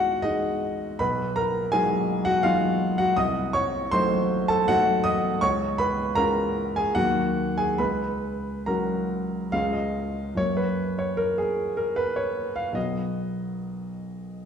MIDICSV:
0, 0, Header, 1, 2, 480
1, 0, Start_track
1, 0, Key_signature, 6, "major"
1, 0, Tempo, 754717
1, 634, Time_signature, 3, 2, 24, 8
1, 634, Tempo, 722892
1, 2074, Tempo, 748130
1, 3994, Tempo, 818554
1, 4954, Tempo, 860832
1, 6394, Tempo, 811908
1, 6874, Tempo, 782269
1, 7834, Tempo, 753769
1, 8916, End_track
2, 0, Start_track
2, 0, Title_t, "Grand piano"
2, 0, Program_c, 0, 0
2, 0, Control_c, 0, 64, 127
2, 0, Note_on_c, 0, 36, 66
2, 0, Note_on_c, 0, 56, 60
2, 0, Note_on_c, 0, 63, 63
2, 0, Note_on_c, 0, 65, 74
2, 0, Note_on_c, 0, 66, 88
2, 0, Note_on_c, 0, 77, 98
2, 0, Note_on_c, 0, 78, 118
2, 129, Note_off_c, 0, 56, 0
2, 131, Note_off_c, 0, 63, 0
2, 138, Note_off_c, 0, 66, 0
2, 142, Note_on_c, 0, 75, 109
2, 149, Note_on_c, 0, 56, 61
2, 149, Note_on_c, 0, 63, 79
2, 152, Note_off_c, 0, 78, 0
2, 377, Note_off_c, 0, 63, 0
2, 390, Note_off_c, 0, 75, 0
2, 605, Note_off_c, 0, 56, 0
2, 631, Note_on_c, 0, 83, 109
2, 635, Note_on_c, 0, 35, 72
2, 638, Note_on_c, 0, 71, 82
2, 645, Control_c, 0, 64, 0
2, 646, Note_off_c, 0, 77, 0
2, 647, Note_off_c, 0, 36, 0
2, 649, Note_off_c, 0, 65, 0
2, 758, Control_c, 0, 64, 127
2, 861, Note_off_c, 0, 71, 0
2, 874, Note_off_c, 0, 83, 0
2, 874, Note_on_c, 0, 82, 111
2, 880, Note_on_c, 0, 70, 85
2, 1099, Note_off_c, 0, 70, 0
2, 1100, Note_off_c, 0, 35, 0
2, 1113, Note_off_c, 0, 82, 0
2, 1113, Note_on_c, 0, 80, 127
2, 1120, Note_on_c, 0, 68, 88
2, 1122, Note_on_c, 0, 54, 62
2, 1124, Note_on_c, 0, 56, 61
2, 1129, Note_on_c, 0, 63, 70
2, 1449, Note_off_c, 0, 68, 0
2, 1465, Note_on_c, 0, 78, 114
2, 1470, Note_off_c, 0, 80, 0
2, 1473, Note_on_c, 0, 66, 87
2, 1568, Note_off_c, 0, 54, 0
2, 1569, Note_off_c, 0, 56, 0
2, 1571, Note_off_c, 0, 63, 0
2, 1583, Note_off_c, 0, 66, 0
2, 1585, Note_on_c, 0, 77, 119
2, 1588, Note_off_c, 0, 78, 0
2, 1594, Note_on_c, 0, 54, 62
2, 1594, Note_on_c, 0, 65, 87
2, 1596, Note_on_c, 0, 56, 62
2, 1599, Note_on_c, 0, 63, 73
2, 1928, Note_off_c, 0, 65, 0
2, 1949, Note_off_c, 0, 77, 0
2, 1951, Note_on_c, 0, 78, 109
2, 1961, Note_on_c, 0, 66, 89
2, 2049, Note_off_c, 0, 54, 0
2, 2050, Note_off_c, 0, 56, 0
2, 2051, Note_off_c, 0, 63, 0
2, 2070, Note_off_c, 0, 66, 0
2, 2073, Note_off_c, 0, 78, 0
2, 2074, Note_on_c, 0, 87, 117
2, 2078, Note_on_c, 0, 36, 74
2, 2081, Note_on_c, 0, 75, 98
2, 2085, Control_c, 0, 64, 0
2, 2174, Control_c, 0, 64, 127
2, 2298, Note_off_c, 0, 75, 0
2, 2310, Note_on_c, 0, 85, 115
2, 2311, Note_off_c, 0, 87, 0
2, 2316, Note_on_c, 0, 73, 97
2, 2539, Note_off_c, 0, 73, 0
2, 2540, Note_off_c, 0, 36, 0
2, 2552, Note_off_c, 0, 85, 0
2, 2555, Note_on_c, 0, 84, 127
2, 2563, Note_on_c, 0, 54, 66
2, 2564, Note_on_c, 0, 57, 64
2, 2564, Note_on_c, 0, 72, 95
2, 2571, Note_on_c, 0, 63, 69
2, 2899, Note_off_c, 0, 72, 0
2, 2920, Note_off_c, 0, 84, 0
2, 2920, Note_on_c, 0, 81, 119
2, 2929, Note_on_c, 0, 69, 91
2, 3019, Note_off_c, 0, 54, 0
2, 3020, Note_off_c, 0, 57, 0
2, 3023, Note_off_c, 0, 63, 0
2, 3037, Note_off_c, 0, 69, 0
2, 3040, Note_off_c, 0, 81, 0
2, 3045, Note_on_c, 0, 78, 126
2, 3050, Note_on_c, 0, 54, 68
2, 3051, Note_on_c, 0, 57, 68
2, 3052, Note_on_c, 0, 66, 88
2, 3056, Note_on_c, 0, 63, 68
2, 3268, Note_off_c, 0, 66, 0
2, 3274, Note_on_c, 0, 87, 127
2, 3281, Note_off_c, 0, 78, 0
2, 3281, Note_on_c, 0, 75, 98
2, 3493, Note_off_c, 0, 54, 0
2, 3493, Note_off_c, 0, 57, 0
2, 3496, Note_off_c, 0, 63, 0
2, 3498, Note_off_c, 0, 75, 0
2, 3511, Note_off_c, 0, 87, 0
2, 3515, Note_on_c, 0, 85, 126
2, 3520, Note_on_c, 0, 37, 74
2, 3523, Control_c, 0, 64, 0
2, 3524, Note_on_c, 0, 73, 91
2, 3632, Control_c, 0, 64, 127
2, 3738, Note_off_c, 0, 73, 0
2, 3750, Note_off_c, 0, 85, 0
2, 3754, Note_on_c, 0, 83, 118
2, 3762, Note_on_c, 0, 71, 88
2, 3983, Note_off_c, 0, 37, 0
2, 3984, Note_off_c, 0, 71, 0
2, 3991, Note_on_c, 0, 82, 125
2, 3996, Note_off_c, 0, 83, 0
2, 3996, Note_on_c, 0, 56, 60
2, 3998, Note_on_c, 0, 61, 63
2, 3998, Note_on_c, 0, 70, 90
2, 4002, Note_on_c, 0, 65, 66
2, 4322, Note_off_c, 0, 70, 0
2, 4343, Note_off_c, 0, 82, 0
2, 4348, Note_on_c, 0, 80, 106
2, 4354, Note_on_c, 0, 68, 79
2, 4441, Note_off_c, 0, 56, 0
2, 4442, Note_off_c, 0, 61, 0
2, 4444, Note_off_c, 0, 65, 0
2, 4457, Note_on_c, 0, 78, 117
2, 4460, Note_off_c, 0, 68, 0
2, 4462, Note_on_c, 0, 39, 78
2, 4464, Note_on_c, 0, 54, 58
2, 4464, Note_on_c, 0, 58, 56
2, 4465, Note_off_c, 0, 80, 0
2, 4465, Note_on_c, 0, 66, 85
2, 4475, Control_c, 0, 64, 0
2, 4590, Control_c, 0, 64, 127
2, 4805, Note_off_c, 0, 66, 0
2, 4825, Note_off_c, 0, 78, 0
2, 4825, Note_on_c, 0, 80, 103
2, 4831, Note_on_c, 0, 68, 73
2, 4931, Note_off_c, 0, 54, 0
2, 4931, Note_off_c, 0, 58, 0
2, 4938, Note_off_c, 0, 39, 0
2, 4947, Note_off_c, 0, 68, 0
2, 4947, Note_on_c, 0, 83, 100
2, 4952, Note_off_c, 0, 80, 0
2, 4953, Note_on_c, 0, 37, 71
2, 4953, Note_on_c, 0, 71, 79
2, 4966, Control_c, 0, 64, 0
2, 5066, Control_c, 0, 64, 127
2, 5420, Note_off_c, 0, 71, 0
2, 5428, Note_off_c, 0, 37, 0
2, 5438, Note_on_c, 0, 82, 91
2, 5440, Note_off_c, 0, 83, 0
2, 5441, Note_on_c, 0, 54, 54
2, 5443, Note_on_c, 0, 70, 71
2, 5445, Note_on_c, 0, 61, 54
2, 5446, Note_on_c, 0, 66, 59
2, 5892, Note_off_c, 0, 54, 0
2, 5894, Note_off_c, 0, 61, 0
2, 5895, Note_off_c, 0, 66, 0
2, 5917, Note_on_c, 0, 77, 107
2, 5922, Note_on_c, 0, 37, 72
2, 5922, Note_on_c, 0, 56, 52
2, 5927, Note_on_c, 0, 61, 53
2, 5928, Control_c, 0, 64, 0
2, 5929, Note_on_c, 0, 65, 53
2, 6032, Control_c, 0, 64, 127
2, 6032, Note_on_c, 0, 75, 81
2, 6035, Note_off_c, 0, 77, 0
2, 6134, Note_off_c, 0, 70, 0
2, 6154, Note_off_c, 0, 82, 0
2, 6375, Note_off_c, 0, 56, 0
2, 6377, Note_off_c, 0, 61, 0
2, 6378, Note_off_c, 0, 65, 0
2, 6378, Note_on_c, 0, 42, 52
2, 6382, Note_on_c, 0, 54, 47
2, 6383, Note_off_c, 0, 37, 0
2, 6385, Note_on_c, 0, 58, 45
2, 6392, Note_off_c, 0, 75, 0
2, 6392, Note_on_c, 0, 73, 100
2, 6393, Note_on_c, 0, 66, 42
2, 6406, Control_c, 0, 64, 0
2, 6506, Note_on_c, 0, 71, 84
2, 6514, Note_off_c, 0, 73, 0
2, 6520, Control_c, 0, 64, 127
2, 6751, Note_off_c, 0, 71, 0
2, 6754, Note_on_c, 0, 73, 88
2, 6863, Note_on_c, 0, 70, 98
2, 6873, Note_off_c, 0, 73, 0
2, 6990, Note_off_c, 0, 70, 0
2, 6991, Note_on_c, 0, 68, 85
2, 7230, Note_on_c, 0, 70, 89
2, 7233, Note_off_c, 0, 68, 0
2, 7348, Note_on_c, 0, 71, 95
2, 7352, Note_off_c, 0, 70, 0
2, 7470, Note_on_c, 0, 73, 89
2, 7471, Note_off_c, 0, 71, 0
2, 7712, Note_off_c, 0, 73, 0
2, 7713, Note_on_c, 0, 77, 91
2, 7800, Note_off_c, 0, 42, 0
2, 7803, Note_off_c, 0, 54, 0
2, 7805, Note_off_c, 0, 58, 0
2, 7809, Note_off_c, 0, 66, 0
2, 7816, Note_on_c, 0, 35, 52
2, 7823, Note_on_c, 0, 54, 45
2, 7825, Note_on_c, 0, 59, 42
2, 7832, Note_on_c, 0, 66, 44
2, 7832, Note_on_c, 0, 75, 86
2, 7833, Note_off_c, 0, 77, 0
2, 7847, Control_c, 0, 64, 0
2, 7949, Control_c, 0, 64, 127
2, 8558, Note_off_c, 0, 75, 0
2, 8916, Note_off_c, 0, 35, 0
2, 8916, Note_off_c, 0, 54, 0
2, 8916, Note_off_c, 0, 59, 0
2, 8916, Note_off_c, 0, 66, 0
2, 8916, End_track
0, 0, End_of_file